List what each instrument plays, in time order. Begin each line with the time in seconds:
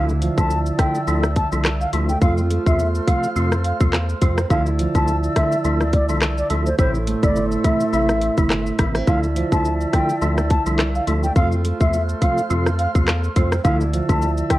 Already playing: analog synth bass D2, tonewheel organ D3 F3 A3 E4, steel-string acoustic guitar D3 E4, flute section D5 E5 A5 E6
0.09 shaker
0.22 steel-string acoustic guitar F3, closed hi-hat, shaker
0.37 analog synth bass D2, tonewheel organ D3 F3 A3 E4, flute A5, kick, shaker
0.50 shaker
0.66 shaker
0.79 tonewheel organ D3 F3 A3 E4, flute G5, kick, cross-stick, closed hi-hat, shaker
0.95 shaker
1.07 analog synth bass D2, tonewheel organ D3 F3 A3 E4, shaker
1.23 cross-stick, shaker
1.36 flute A5, kick, closed hi-hat, shaker
1.52 analog synth bass C2, tonewheel organ D3 F3 A3 E4, shaker
1.65 cross-stick, clap, shaker
1.81 flute F5, shaker
1.93 analog synth bass D2, tonewheel organ D3 F3 A3 E4, steel-string acoustic guitar A3, closed hi-hat, shaker
2.09 flute G5, shaker
2.21 analog synth bass F2, tonewheel organ C3 F3 A3 F4, steel-string acoustic guitar F4, flute section A4 C5 C6 F6, flute F5, kick, shaker
2.38 shaker
2.50 steel-string acoustic guitar A3, closed hi-hat, shaker
2.66 analog synth bass E2, tonewheel organ C3 F3 A3 F4, flute E5, kick, shaker
2.79 shaker
2.95 shaker
3.07 tonewheel organ C3 F3 A3 F4, flute F5, kick, closed hi-hat, shaker
3.23 shaker
3.36 analog synth bass F2, tonewheel organ C3 F3 A3 F4, shaker
3.52 cross-stick, shaker
3.64 flute F5, closed hi-hat, shaker
3.80 analog synth bass E2, tonewheel organ C3 F3 A3 F4, kick, shaker
3.93 cross-stick, clap, shaker
4.09 shaker
4.21 analog synth bass F2, tonewheel organ C3 F3 A3 F4, steel-string acoustic guitar C4, kick, closed hi-hat, shaker
4.38 cross-stick, shaker
4.50 analog synth bass D2, tonewheel organ D3 F3 A3 E4, steel-string acoustic guitar D3 E4, flute section D5 E5 A5 E6, flute F5, kick, shaker
4.66 shaker
4.79 steel-string acoustic guitar F3, closed hi-hat, shaker
4.95 analog synth bass D2, tonewheel organ D3 F3 A3 E4, flute A5, kick, shaker
5.08 shaker
5.23 shaker
5.36 tonewheel organ D3 F3 A3 E4, flute E5, kick, cross-stick, closed hi-hat, shaker
5.52 shaker
5.64 analog synth bass D2, tonewheel organ D3 F3 A3 E4, shaker
5.81 cross-stick, shaker
5.93 flute D5, kick, closed hi-hat, shaker
6.09 analog synth bass C2, tonewheel organ D3 F3 A3 E4, shaker
6.22 cross-stick, clap, shaker
6.38 flute D5, shaker
6.50 analog synth bass D2, tonewheel organ D3 F3 A3 E4, steel-string acoustic guitar A3, closed hi-hat, shaker
6.66 flute C5, shaker
6.79 analog synth bass A1, steel-string acoustic guitar A2 E4, tonewheel organ C3 E3 A3 E4, flute section A4 C5 E5 C6 E6, flute C5, kick, shaker
6.95 shaker
7.07 steel-string acoustic guitar A3, closed hi-hat, shaker
7.23 analog synth bass G1, tonewheel organ C3 E3 A3 E4, flute D5, kick, shaker
7.36 shaker
7.52 shaker
7.64 tonewheel organ C3 E3 A3 E4, flute E5, kick, closed hi-hat, shaker
7.81 shaker
7.93 analog synth bass A1, tonewheel organ C3 E3 A3 E4, flute E5, shaker
8.09 cross-stick, shaker
8.22 closed hi-hat, shaker
8.37 analog synth bass G1, tonewheel organ C3 E3 A3 E4, kick, shaker
8.50 cross-stick, clap, shaker
8.66 shaker
8.79 analog synth bass A1, tonewheel organ C3 E3 A3 E4, steel-string acoustic guitar A#3, kick, cross-stick, closed hi-hat, shaker
8.95 steel-string acoustic guitar C4, cross-stick, shaker
9.07 analog synth bass D2, tonewheel organ D3 F3 A3 E4, steel-string acoustic guitar D3 E4, flute section D5 A5 E6, flute F5, kick, shaker
9.23 shaker
9.36 steel-string acoustic guitar F3, closed hi-hat, shaker
9.52 analog synth bass D2, tonewheel organ D3 F3 A3 E4, flute A5, kick, shaker
9.65 shaker
9.81 shaker
9.93 tonewheel organ D3 F3 A3 E4, flute G5, kick, cross-stick, closed hi-hat, shaker
10.09 shaker
10.21 analog synth bass D2, tonewheel organ D3 F3 A3 E4, shaker
10.38 cross-stick, shaker
10.50 flute A5, kick, closed hi-hat, shaker
10.66 analog synth bass C2, tonewheel organ D3 F3 A3 E4, shaker
10.79 cross-stick, clap, shaker
10.95 flute F5, shaker
11.07 analog synth bass D2, tonewheel organ D3 F3 A3 E4, steel-string acoustic guitar A3, closed hi-hat, shaker
11.23 flute G5, shaker
11.36 analog synth bass F2, tonewheel organ C3 F3 A3 F4, steel-string acoustic guitar F4, flute section A4 C5 C6 F6, flute F5, kick, shaker
11.52 shaker
11.65 steel-string acoustic guitar A3, closed hi-hat, shaker
11.80 analog synth bass E2, tonewheel organ C3 F3 A3 F4, flute E5, kick, shaker
11.93 shaker
12.09 shaker
12.21 tonewheel organ C3 F3 A3 F4, flute F5, kick, closed hi-hat, shaker
12.38 shaker
12.50 analog synth bass F2, tonewheel organ C3 F3 A3 F4, shaker
12.66 cross-stick, shaker
12.79 flute F5, closed hi-hat, shaker
12.95 analog synth bass E2, tonewheel organ C3 F3 A3 F4, kick, shaker
13.08 cross-stick, clap, shaker
13.24 shaker
13.36 analog synth bass F2, tonewheel organ C3 F3 A3 F4, steel-string acoustic guitar C4, kick, closed hi-hat, shaker
13.52 cross-stick, shaker
13.64 analog synth bass D2, tonewheel organ D3 F3 A3 E4, steel-string acoustic guitar D3 E4, flute section D5 E5 A5 E6, flute F5, kick, shaker
13.81 shaker
13.93 steel-string acoustic guitar F3, closed hi-hat, shaker
14.09 analog synth bass D2, tonewheel organ D3 F3 A3 E4, flute A5, kick, shaker
14.22 shaker
14.38 shaker
14.50 tonewheel organ D3 F3 A3 E4, flute G5, kick, cross-stick, closed hi-hat, shaker